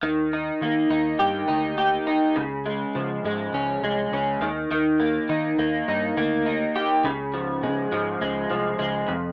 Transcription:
X:1
M:4/4
L:1/8
Q:1/4=103
K:Eb
V:1 name="Clean electric guitar"
E, E B, E G E G E | _D, A, F, A, _D A, D E, | E, B, E B, E B, E G | _D, F, A, F, A, F, A, F,, |]
V:2 name="Picked electric bass" clef=bass
E,,2 E, E,, G,, D,,2 z | _D,,2 _D, A,, D,, C,, D,, E,, | E,,2 E, E,, G,, D,,2 z | _D,,2 _D, A,, D,, C,, D,, F,,, |]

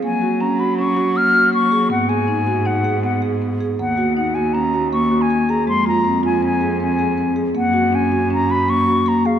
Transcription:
X:1
M:5/4
L:1/16
Q:1/4=160
K:Gb
V:1 name="Flute"
a4 b2 c'2 d'4 f'4 d'4 | g2 a6 g4 g2 z6 | g4 g2 a2 b4 d'3 a3 b2 | =c'2 b4 a2 a4 a6 z2 |
g4 a4 b2 c'2 d'4 b2 f2 |]
V:2 name="Marimba"
B,2 G2 D2 G2 D2 G2 B,2 G2 B,2 A2 | C2 A2 E2 G2 E2 A2 C2 A2 C2 A2 | B,2 G2 E2 G2 D2 G2 B,2 G2 B,2 A2 | A,2 F2 =C2 F2 C2 A2 C2 A2 C2 A2 |
B,2 G2 D2 G2 D2 G2 B,2 G2 B,2 A2 |]
V:3 name="Cello" clef=bass
G,16- G,4 | A,,16- A,,4 | E,,16- E,,4 | F,,16- F,,4 |
G,,16- G,,4 |]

